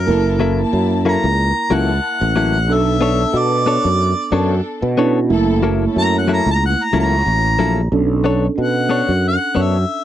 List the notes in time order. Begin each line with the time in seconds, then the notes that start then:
Already playing: A#4
0.07 F#1 A#3 E4 A4 A#4
0.40 F#3 A#3 E4 A4
0.58 A#3 E4 A5
0.73 F#2
1.05 F#3 A#3 E4 A4 A#5
1.24 C#2
1.70 C#2 F#3 A#3 E4 A4 F#5 A5
2.21 A1
2.36 F#3 A#3 E4 A4
2.68 B1 B3 C#4 D4 A4
2.73 E5
3.01 B3 D4 A4 C#5
3.19 D4 A4
3.33 B2
3.38 D5
3.66 B3 D4 A4 C#5
3.85 F#2
4.32 F#2 B3 D4 A4 C#5
4.82 B2
4.98 B3 C#4 D4 E4 A4 C#5
5.30 F#1 A3 A#3 E4 A4
5.63 F#3 A#3 E4 A4
5.82 C#4 E4 A4
5.96 F#2 A#5
6.18 F#5
6.28 F#3 A#3 E4 A4
6.33 A#5
6.46 C#2
6.51 A#5
6.66 F#5
6.84 A#5
6.92 C#2 F#3 A#3 C#4 E4 F#4 A4
6.99 A#5
7.26 A1
7.59 A#1 F#3 A#3 E4 A4
7.92 B1 C#4 D4 A4
8.24 B3 D4 A4 C#5
8.58 B2 F#5
8.89 B3 D4 A4 C#5
9.08 F#2
9.28 F#5
9.55 F#2 B3 D4 A4 C#5
9.61 E5